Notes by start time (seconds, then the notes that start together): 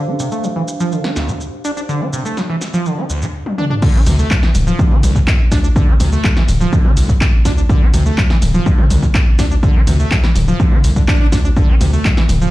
Already playing: D4 G4 C5 F5
0.07 D4
0.19 C3, shaker
0.32 A3, shaker
0.44 E3, shaker
0.56 E3
0.68 shaker
0.80 F3, shaker
0.92 D3, shaker
1.04 D4, snare
1.16 D2, snare, shaker
1.28 G3, shaker
1.41 shaker
1.65 D4, shaker
1.77 D4, shaker
1.89 D3, shaker
2.01 D4
2.13 C3, shaker
2.25 A3, shaker
2.37 E3, snare, shaker
2.49 E3
2.61 snare, shaker
2.74 F3, shaker
2.86 D3, shaker
2.98 D4
3.10 D2, shaker
3.22 G3, shaker
3.46 high tom
3.58 D4, mid tom
3.70 D4, mid tom
3.82 D3, kick, crash, shaker
3.95 D4
4.06 D2 C3, open hi-hat, mid tom, shaker
4.19 A3, shaker
4.31 E3, kick, clap, shaker
4.43 E3, snare
4.55 D1, open hi-hat, mid tom, shaker
4.67 F3, shaker
4.79 D3, kick, shaker
4.91 D4, mid tom
5.03 C2 D2, open hi-hat, mid tom, shaker
5.15 G3, kick, shaker
5.27 kick, clap, shaker
5.52 D2 D4, kick, snare, open hi-hat, shaker
5.64 D4, shaker
5.76 D3, kick, shaker
5.88 D4
6.00 D2 C3, open hi-hat, mid tom, shaker
6.12 A3, shaker
6.24 E3, kick, clap, shaker
6.37 E3, snare
6.48 D1, open hi-hat, mid tom, shaker
6.61 F3, shaker
6.73 D3, kick, shaker
6.85 D4, mid tom
6.97 C2 D2, open hi-hat, shaker
7.09 G3, kick, shaker
7.21 kick, clap, shaker
7.45 D2 D4, kick, snare, open hi-hat, shaker
7.57 D4, shaker
7.69 D3, kick, shaker
7.82 D4
7.94 D2 C3, open hi-hat, mid tom, shaker
8.06 A3, shaker
8.18 E3, kick, clap, shaker
8.30 E3, snare
8.42 D1, open hi-hat, mid tom, shaker
8.54 F3, shaker
8.66 D3, kick, shaker
8.78 D4, mid tom
8.90 C2 D2, open hi-hat, mid tom, shaker
9.03 G3, kick, shaker
9.15 kick, clap, shaker
9.39 D2 D4, kick, snare, open hi-hat, shaker
9.51 D4, shaker
9.63 D3, kick, shaker
9.75 D4
9.87 D2 C3, open hi-hat, mid tom, shaker
9.99 A3, shaker
10.11 E3, kick, clap, shaker
10.24 E3, snare
10.36 D1, open hi-hat, mid tom, shaker
10.48 F3, shaker
10.60 D3, kick, shaker
10.72 D4, mid tom
10.84 C2 D2, open hi-hat, shaker
10.96 D3, kick, shaker
11.08 D4, kick, clap, shaker
11.20 D4
11.32 D2 D4, kick, snare, open hi-hat, shaker
11.45 D4, shaker
11.57 D3, kick, shaker
11.69 D4
11.81 D2 C3, open hi-hat, mid tom, shaker
11.93 A3, shaker
12.05 E3, kick, clap, shaker
12.17 E3, snare
12.29 D1, open hi-hat, mid tom, shaker
12.41 F3, shaker